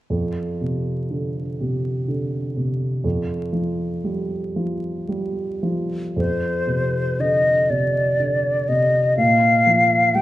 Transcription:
0.10 F2
0.61 C3
1.10 D3
1.61 C3
2.08 D3
2.57 C3
3.04 F2
3.53 F3
4.04 G3
4.56 F3
5.09 G3
5.63 F3
6.16 F2 C5
6.67 C3
7.19 D3 D#5
7.70 C3 D5
8.20 D3
8.68 C3 D#5
9.17 A#2 F5
9.67 F3
10.15 G3 G5

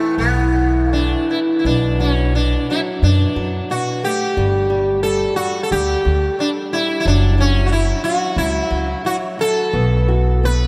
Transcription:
Already playing: E3 A3
0.18 B1 E3 B3
0.55 E3
0.92 E3 A3 D4
1.30 E3 E4
1.59 E4
1.64 B1 B2 D4
1.99 F#3 C#4
2.35 B2 D4
2.70 F#3 E4
3.02 F#2 B2 D4
3.36 F#2 F#3
3.70 B2 F#4
4.03 A3 G4
4.37 G1 G3
4.70 G3
5.03 G3 A4
5.36 G3 F#4
5.63 A4
5.71 D2 G3 G4
6.05 D2 G3
6.39 G3 D4
6.73 G3 E4
7.00 E4
7.05 F#1 F#3 D4
7.38 F#3 C#4
7.66 F#4
7.71 F#3 E4
8.04 F#3 F#4
8.36 C#2 F#3 E4
8.70 C#2 F#3
9.05 F#3 F#4
9.39 F#3 A4
9.73 B1 B3
10.08 F#4
10.43 B3 B4

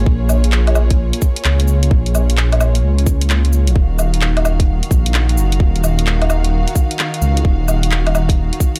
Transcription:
Already playing: A#3 F4 G#4 C#5
0.06 A#1, kick
0.29 cabasa, low woodblock
0.44 closed hi-hat
0.52 clap
0.67 closed hi-hat, low woodblock
0.75 cabasa, low woodblock
0.90 kick, closed hi-hat
1.13 closed hi-hat
1.22 kick, cabasa
1.36 closed hi-hat
1.45 C#2, clap
1.60 closed hi-hat
1.68 cabasa
1.83 closed hi-hat
1.91 A#1, kick
2.06 closed hi-hat
2.15 cabasa, low woodblock
2.30 closed hi-hat
2.37 clap
2.52 closed hi-hat, low woodblock
2.61 cabasa, low woodblock
2.75 closed hi-hat
2.83 C#2
2.99 closed hi-hat
3.06 kick, cabasa
3.21 closed hi-hat
3.30 clap
3.45 closed hi-hat
3.53 cabasa
3.67 A#1, closed hi-hat
3.76 D#1 D#3 D#4 F#4 F5, kick
3.99 cabasa, low woodblock
4.14 closed hi-hat
4.21 clap
4.37 closed hi-hat, low woodblock
4.45 cabasa, low woodblock
4.60 kick, closed hi-hat
4.83 closed hi-hat
4.91 A#1, kick, cabasa
5.06 closed hi-hat
5.14 clap
5.29 closed hi-hat
5.37 F#1, cabasa
5.52 closed hi-hat
5.60 D#1, kick
5.76 closed hi-hat
5.84 cabasa, low woodblock
5.99 closed hi-hat
6.07 clap
6.22 closed hi-hat, low woodblock
6.30 cabasa, low woodblock
6.44 closed hi-hat
6.68 closed hi-hat
6.75 kick, cabasa
6.91 closed hi-hat
6.99 clap
7.14 closed hi-hat
7.21 C#2, cabasa
7.37 closed hi-hat
7.45 D#1, kick
7.68 cabasa, low woodblock
7.83 closed hi-hat
7.91 clap
8.07 closed hi-hat, low woodblock
8.15 cabasa, low woodblock
8.29 kick, closed hi-hat
8.53 closed hi-hat
8.60 kick, cabasa
8.76 closed hi-hat

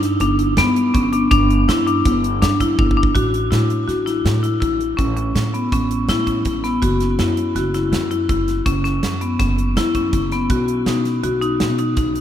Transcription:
Already playing: G2
0.03 snare, closed hi-hat
0.20 G1 D4, closed hi-hat
0.39 closed hi-hat
0.57 G2 B3, snare, closed hi-hat
0.76 closed hi-hat
0.94 G1 C#4, kick, closed hi-hat
1.13 D4, closed hi-hat
1.31 G1 D4, kick, closed hi-hat
1.50 closed hi-hat
1.68 G2 E4, snare, closed hi-hat
1.87 D4, closed hi-hat
2.05 G1, kick, closed hi-hat
2.24 closed hi-hat
2.42 G2 D4, snare, closed hi-hat
2.60 E4, kick, closed hi-hat
2.79 G1 D4, kick
2.91 kick
2.97 D4
3.03 kick
3.15 A1 F#4, kick, closed hi-hat
3.34 closed hi-hat
3.51 A2 E4, snare, closed hi-hat
3.70 closed hi-hat
3.88 A1 F#4, snare, closed hi-hat
4.06 E4, snare, closed hi-hat
4.25 A2, snare, closed hi-hat
4.43 E4, closed hi-hat
4.61 A1 E4, kick, closed hi-hat
4.81 closed hi-hat
4.97 A1 C#4, kick, closed hi-hat
5.16 C#4, closed hi-hat
5.35 A2, snare, closed hi-hat
5.54 B3, closed hi-hat
5.72 A1 C#4, kick, closed hi-hat
5.91 closed hi-hat
6.08 A2 E4, snare, closed hi-hat
6.27 C#4, kick, closed hi-hat
6.45 A1, kick, closed hi-hat
6.64 B3, snare, closed hi-hat
6.82 F#1 F#4, kick, closed hi-hat
7.00 snare, closed hi-hat
7.19 F#2 E4, snare, closed hi-hat
7.37 closed hi-hat
7.55 F#1 F#4, snare, closed hi-hat
7.74 E4, snare, closed hi-hat
7.92 F#2, snare, closed hi-hat
8.11 E4, closed hi-hat
8.29 F#1 E4, kick, closed hi-hat
8.48 snare, closed hi-hat
8.66 F#1 C#4, kick, closed hi-hat
8.84 C#4, snare, closed hi-hat
9.03 F#2, snare, closed hi-hat
9.21 B3, closed hi-hat
9.39 F#1 C#4, kick, snare, closed hi-hat
9.58 closed hi-hat
9.75 F#2 E4, snare, closed hi-hat
9.95 C#4, kick, closed hi-hat
10.13 F#1, kick, closed hi-hat
10.32 B3, snare, closed hi-hat
10.50 B1 F#4, kick, closed hi-hat
10.68 closed hi-hat
10.86 B2 D#4, snare, closed hi-hat
11.05 snare, closed hi-hat
11.23 B1 F#4, closed hi-hat
11.41 D#4, closed hi-hat
11.60 B2, snare, closed hi-hat
11.78 D#4, closed hi-hat
11.97 B1 D#4, kick, closed hi-hat
12.15 closed hi-hat

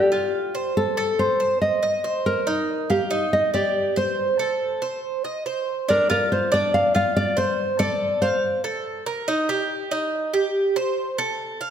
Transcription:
Already playing: D4 G4
0.12 F4
0.55 C5
0.77 A4
0.97 A4
1.19 C5
1.40 C5
1.62 D#5
1.83 D#5
2.04 C5
2.26 A#4
2.47 D#4
2.90 G4 F5
3.11 D#4
3.33 D#5
3.54 G4 D5
3.96 C5
4.39 A4
4.82 C5
5.25 D#5
5.46 C5
5.89 D4 A#4
6.10 F4 A#4
6.32 C5
6.52 D4 D5
6.74 F5
6.95 F4 F5
7.17 D5
7.37 C5
7.79 A4 D5
8.22 C5 F5
8.64 A4
9.06 A#4
9.28 D#4
9.49 G4
9.91 D#4
10.34 G4
10.76 C5
11.18 A4
11.61 F5

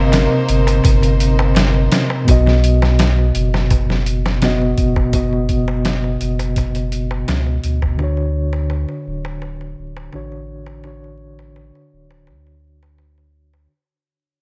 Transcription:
Already playing: G1 C3 A#3 C4 D#4 A#4 C5 D#5
0.12 snare, closed hi-hat, darbuka tek
0.32 darbuka tek
0.49 G1, closed hi-hat
0.67 closed hi-hat, darbuka tek
0.84 G1, kick, closed hi-hat, darbuka tek
1.02 closed hi-hat, darbuka tek
1.20 closed hi-hat
1.39 darbuka tek
1.55 snare, closed hi-hat, darbuka tek
1.74 darbuka tek
1.92 snare, closed hi-hat
2.10 darbuka tek
2.25 B1 B2 B3, kick, closed hi-hat, darbuka tek
2.29 F#4 D#5
2.46 snare, darbuka tek
2.64 closed hi-hat
2.82 snare, darbuka tek
2.99 snare, closed hi-hat, darbuka tek
3.19 darbuka tek
3.35 F#1, closed hi-hat
3.54 snare, darbuka tek
3.71 kick, closed hi-hat, darbuka tek
3.90 snare, darbuka tek
4.06 closed hi-hat
4.26 snare, darbuka tek
4.42 B2 B3 F#4 D#5, snare, closed hi-hat, darbuka tek
4.62 darbuka tek
4.78 F#1, kick, closed hi-hat
4.96 kick, darbuka tek
5.13 B2 B3 F#4 D#5, kick, closed hi-hat, darbuka tek
5.33 darbuka tek
5.49 kick, closed hi-hat
5.68 darbuka tek
5.85 snare, closed hi-hat, darbuka tek
6.04 darbuka tek
6.21 F#1, closed hi-hat
6.39 closed hi-hat, darbuka tek
6.56 kick, closed hi-hat, darbuka tek
6.75 closed hi-hat, darbuka tek
6.92 closed hi-hat
7.11 darbuka tek
7.28 C#2, snare, closed hi-hat, darbuka tek
7.46 darbuka tek
7.64 D2, closed hi-hat
7.82 kick, darbuka tek
7.97 D3 D4, darbuka tek
8.01 F#4 C#5
8.17 darbuka tek
8.53 darbuka tek
8.70 darbuka tek
8.89 darbuka tek
9.07 D1
9.25 darbuka tek
9.42 darbuka tek
9.61 darbuka tek
9.78 D1
9.97 darbuka tek
10.13 A1 D3 D4 F#4 C#5, darbuka tek
10.32 darbuka tek
10.66 darbuka tek
10.84 D3 D4 F#4 C#5, darbuka tek
11.04 darbuka tek
11.39 darbuka tek
11.56 darbuka tek
11.75 darbuka tek
11.93 D1
12.11 darbuka tek
12.27 D2, darbuka tek
12.47 darbuka tek
12.83 darbuka tek
12.98 darbuka tek
13.18 darbuka tek
13.53 darbuka tek

